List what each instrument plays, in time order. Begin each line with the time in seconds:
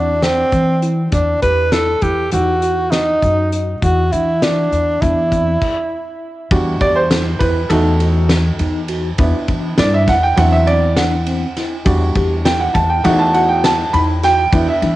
Already playing: upright bass E2, tine electric piano C4, tenor saxophone D4
0.23 tenor saxophone C4, tine electric piano D4, snare, closed hi-hat
0.52 upright bass E3, tine electric piano C4, kick, closed hi-hat
0.82 tine electric piano E4, closed hi-hat
1.12 upright bass E2, tenor saxophone D4, kick, closed hi-hat
1.42 upright bass E2, tine electric piano G4, tenor saxophone B4, kick, closed hi-hat
1.72 tine electric piano E4, tenor saxophone A4, snare, closed hi-hat
2.02 upright bass E2, tine electric piano E4, tenor saxophone G4, kick, closed hi-hat
2.31 upright bass E2, tine electric piano D#4, tenor saxophone F#4, closed hi-hat
2.62 tine electric piano F#4, closed hi-hat
2.91 tenor saxophone D#4, snare, closed hi-hat
3.22 upright bass F#2, tine electric piano D#4, kick, closed hi-hat
3.52 tine electric piano F#4, closed hi-hat
3.82 upright bass E2, tine electric piano E4, tenor saxophone F#4, kick, closed hi-hat
4.12 upright bass E3, tine electric piano D4, tenor saxophone E4, closed hi-hat
4.42 tenor saxophone D4, tine electric piano E4, snare, closed hi-hat
4.72 upright bass E2, closed hi-hat
5.02 upright bass E2, tine electric piano D4, tenor saxophone E4, kick, closed hi-hat
5.32 tine electric piano C4, kick, closed hi-hat
5.62 kick, crash
6.51 upright bass E2, grand piano G3 D4 F#4, kick, ride
6.81 upright bass E2, tine electric piano G4, grand piano D5, kick, ride
6.96 grand piano C5
7.11 tine electric piano E4, snare, ride
7.39 upright bass E2, tine electric piano E4, grand piano B4, kick, ride
7.69 upright bass E2, grand piano A3 D#4 F#4 A4, tine electric piano D#4, ride
8.00 tine electric piano F#4, ride
8.29 snare, ride
8.59 upright bass E2, tine electric piano D#4, ride
8.88 tine electric piano F#4, ride
9.18 upright bass E2, grand piano B3 D4 E4, tine electric piano E4, kick, ride
9.48 upright bass E3, tine electric piano D4, kick, ride
9.78 upright bass G2, tine electric piano E4, grand piano D5, snare, ride
9.94 grand piano E5
10.08 upright bass E2, grand piano F#5, kick, snare, ride
10.23 grand piano G5
10.36 upright bass E2, grand piano F#3 C4 E4 F#5, tine electric piano D4, ride
10.52 grand piano E5
10.67 tine electric piano C4, grand piano D5, ride
10.96 tine electric piano D4, grand piano F#5, snare, ride
11.26 tine electric piano C4, ride
11.57 tine electric piano E4, snare, ride
11.85 upright bass E2, grand piano G3 D4 F#4, kick, ride
12.15 upright bass E2, tine electric piano G4, kick, ride
12.45 tine electric piano E4, grand piano G5, snare, ride
12.60 grand piano F#5
12.74 upright bass E2, tine electric piano E4, grand piano A5, kick, ride
12.90 grand piano G5
13.04 upright bass E2, grand piano A3 D#4 F#4 F#5, tine electric piano D#4, ride
13.19 grand piano A5
13.34 tine electric piano F#4, grand piano F#5, ride
13.49 grand piano G5
13.64 grand piano A5, snare, ride
13.93 upright bass E2, tine electric piano D#4, grand piano B5, ride
14.23 tine electric piano F#4, grand piano G5, snare, ride
14.53 upright bass E2, grand piano B3 D4 E4, tine electric piano E4, kick, ride
14.69 grand piano E5
14.82 upright bass E3, tine electric piano D4, ride